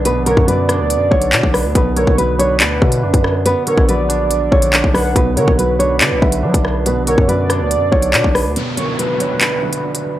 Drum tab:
HH |x-x-x-x-x--xx-o-|x-x-x-x-x--x-x--|x-x-x-x-x--xx-o-|x-x-x-x-x--x-x--|
CP |------------x---|--------x-------|------------x---|--------x-------|
SD |------r-------r-|--------------r-|--------------r-|--------------r-|
BD |---o------o--o--|o--o------o--o--|---o------o--o--|o--o------o--o--|

HH |x-x-x-x-x--xx-o-|x-x-x-x-x--x-x--|
CP |------------x---|--------x-------|
SD |------r-------r-|----------------|
BD |---o------o--o--|----------------|